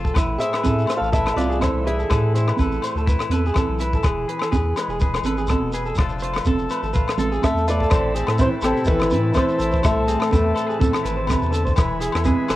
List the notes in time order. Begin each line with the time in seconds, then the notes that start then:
Already playing: F1 F3 A3 F4 A4
0.04 A4, kick, shekere
0.14 A1 A2 E4 B4, kick, cross-stick, muted conga, low agogo, shekere
0.38 E4 G#4 C5 E5, closed hi-hat, muted conga, shekere
0.53 B4, cross-stick, low agogo
0.63 A2 A4 B4, kick, high conga, shekere
0.79 shekere
0.86 A3 C5, low agogo, shekere
0.90 cross-stick, closed hi-hat
0.97 A4 F5
1.01 A1 A4, shekere
1.12 E4 A4 B4 E5, kick, muted conga, shekere
1.26 cross-stick, low agogo
1.36 C2 F4 B4 D5, closed hi-hat, high conga, shekere
1.50 G#4, shekere
1.60 E3 E4 A4 C5, kick, cross-stick, high conga, low agogo, shekere
1.74 C2
1.85 E4 G#4 B4 E5, closed hi-hat, muted conga
1.99 A4, shekere
2.09 A2 A4 B4, kick, cross-stick, muted conga, low agogo, shekere
2.34 E4 C5, closed hi-hat, muted conga, shekere
2.48 B4, cross-stick, low agogo
2.57 A1 A4 B4, kick, high conga, shekere
2.72 shekere
2.82 A3 C5, closed hi-hat, low agogo, shekere
2.95 D2 A4, shekere
3.06 E4 B4, kick, muted conga, shekere
3.19 cross-stick, low agogo
3.29 E2 A4 B4, closed hi-hat, high conga, shekere
3.46 G#4, shekere
3.54 E3 A4, kick, cross-stick, high conga, low agogo, shekere
3.69 B1
3.79 E4 B4, closed hi-hat, muted conga, shekere
3.93 A4, kick, shekere
4.03 E1 E3 G#4 B4, kick, cross-stick, muted conga, low agogo, shekere
4.28 G#4 B4, closed hi-hat, muted conga
4.39 A4, cross-stick, low agogo
4.51 E2 G#4 B4, kick, high conga, shekere
4.76 G#3 B4, cross-stick, closed hi-hat, low agogo, shekere
4.88 E1 G#4, shekere
5.00 G#4 B4, kick, muted conga, shekere
5.14 cross-stick, low agogo
5.23 G#1 A4 B4, closed hi-hat, high conga, shekere
5.37 G#4, shekere
5.47 B2 A4, kick, cross-stick, high conga, low agogo, shekere
5.61 E1
5.73 G#4 B4, closed hi-hat, muted conga, shekere
5.86 A4, shekere
5.95 F1 F3 A3 D4, muted clean electric guitar stroke, kick, cross-stick, muted conga, low agogo, shekere
6.00 F4 A4
6.09 shekere
6.19 C5, muted conga, shekere
6.23 F4, closed hi-hat
6.34 B4, cross-stick, low agogo, shekere
6.45 F1 A4, kick, high conga, shekere
6.58 shekere
6.70 A3 B4, closed hi-hat, low agogo, shekere
6.83 G#1 A4, shekere
6.93 F4 B4, kick, muted conga, shekere
7.08 cross-stick, low agogo, shekere
7.17 A1 A4, closed hi-hat, high conga, low conga, shekere
7.32 G#4, shekere
7.42 A3 A4 E5, muted clean electric guitar stroke, kick, cross-stick, high conga, low agogo, shekere
7.54 E2, shekere
7.68 A3 F4 A4 B4 D5, closed hi-hat, shekere
7.80 A4, kick, shekere
7.89 A1 A2 A3 C4 C5 A5 B5, kick, cross-stick, muted conga, low agogo, shekere
7.93 C4 E4 A4
8.15 C4 G#4, closed hi-hat, shekere
8.27 A2 A4, cross-stick, low agogo, shekere
8.38 A3 E4 B4 C5, kick, high conga, shekere
8.44 E3
8.62 A1 C4 E4 A4, cross-stick, closed hi-hat, muted conga, low agogo, shekere
8.68 C3
8.77 shekere
8.85 G#1 E3 E4 A4 B4, kick, muted conga, shekere
8.91 E3
9.00 cross-stick, low agogo, shekere
9.10 A2 E4 B4, closed hi-hat, muted conga, high conga, shekere
9.23 muted clean electric guitar stroke
9.34 A3 E4 A4 B4 C5, kick, cross-stick, high conga, low agogo, shekere
9.39 E3
9.48 shekere
9.59 A1 E4 A4, closed hi-hat, shekere
9.72 C5, kick, shekere
9.83 A2 A3 A4 C5 E5, kick, cross-stick, muted conga, low agogo, shekere
9.96 C2
10.08 C4 G#4, closed hi-hat, shekere
10.20 A4, cross-stick, low agogo, shekere
10.31 E2 A3 E4 B4, kick, high conga, shekere
10.55 A4, closed hi-hat, muted conga, low agogo, shekere
10.67 G#4 B4, shekere
10.79 E2 E3 A4, kick, muted conga, high conga, shekere
10.93 cross-stick, low agogo, shekere
11.03 G#1 E4 B4, closed hi-hat, muted conga, shekere
11.17 C5
11.27 C3 B4, kick, cross-stick, high conga, low agogo, shekere
11.42 E2, shekere
11.50 D3 A4, closed hi-hat, shekere
11.65 C5, kick, shekere
11.76 E1 E3 B4 E5 G#5 B5, kick, cross-stick, muted conga, low agogo, shekere
12.00 E4 G#4, closed hi-hat, shekere
12.12 E2 A4, cross-stick, low agogo, shekere
12.24 G#3 G#4 B4, kick, high conga, shekere
12.48 E1 A4 B4, cross-stick, closed hi-hat, low agogo, shekere